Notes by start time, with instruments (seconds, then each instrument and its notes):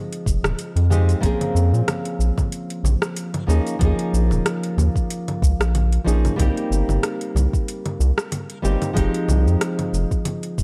Already playing: nylon-string guitar F3 G#3 C4 D#4 G4
0.13 closed hi-hat
0.26 analog synth bass F1, kick, shaker
0.43 analog synth bass D#1, cross-stick, low conga, shaker
0.59 closed hi-hat, shaker
0.76 analog synth bass F2, closed hi-hat
0.90 nylon-string guitar F3 G#3 C4 D#4 G4, low conga, shaker
1.09 closed hi-hat, shaker
1.20 analog synth bass A#1, nylon-string guitar F3 A#3 C4, kick, closed hi-hat, shaker
1.24 nylon-string guitar C#4 G#4
1.41 closed hi-hat, low conga
1.54 analog synth bass F2, shaker
1.72 analog synth bass A#2, shaker
1.88 cross-stick, closed hi-hat, low conga, shaker
2.05 closed hi-hat
2.19 analog synth bass A#1, shaker
2.38 kick, low conga, shaker
2.52 closed hi-hat, shaker
2.70 closed hi-hat
2.83 analog synth bass A#1, low conga, shaker
3.02 cross-stick, shaker
3.17 closed hi-hat, shaker
3.34 closed hi-hat, low conga
3.47 analog synth bass D#2, nylon-string guitar F3 A#3 C#4 D#4 G#4, shaker
3.67 closed hi-hat, shaker
3.79 analog synth bass D#2, nylon-string guitar F3 A#3 C#4, kick, closed hi-hat, low conga, shaker
3.83 nylon-string guitar D#4 G#4
3.99 closed hi-hat
4.13 analog synth bass A#1, shaker
4.31 analog synth bass D#1, low conga, shaker
4.46 cross-stick, closed hi-hat, shaker
4.63 closed hi-hat
4.77 analog synth bass D#2, low conga, shaker
4.96 kick, shaker
5.10 closed hi-hat, shaker
5.28 closed hi-hat, low conga
5.42 analog synth bass C#2, kick, shaker
5.59 analog synth bass A#1, cross-stick, closed hi-hat, shaker
5.75 closed hi-hat, low conga, shaker
5.93 closed hi-hat
6.04 analog synth bass A#1, nylon-string guitar F3 A#3 C#4 D#4 G#4, shaker
6.25 closed hi-hat, low conga, shaker
6.36 analog synth bass C2, nylon-string guitar G3 A#3 C4, kick, closed hi-hat, low conga
6.40 nylon-string guitar D#4 G4, shaker
6.57 closed hi-hat
6.70 analog synth bass G1, shaker
6.88 analog synth bass G1, low conga, shaker
7.03 cross-stick, closed hi-hat, shaker
7.21 closed hi-hat
7.35 analog synth bass C2, low conga, shaker
7.53 kick, shaker
7.68 closed hi-hat, shaker
7.86 closed hi-hat, low conga
8.00 analog synth bass C2, shaker
8.18 cross-stick, shaker
8.32 closed hi-hat, low conga, shaker
8.50 closed hi-hat
8.62 analog synth bass G1, nylon-string guitar G3 A#3 C4 D#4 G4, shaker
8.82 closed hi-hat, low conga, shaker
8.93 analog synth bass F1, nylon-string guitar F3 G#3 C4, kick, closed hi-hat
8.97 nylon-string guitar D#4 G4, shaker
9.14 closed hi-hat
9.28 analog synth bass C2, low conga, shaker
9.46 analog synth bass F2, shaker
9.61 cross-stick, closed hi-hat, shaker
9.79 closed hi-hat, low conga
9.93 analog synth bass F1, shaker
10.11 kick, shaker
10.25 closed hi-hat, low conga, shaker
10.43 closed hi-hat
10.58 analog synth bass F1, kick, shaker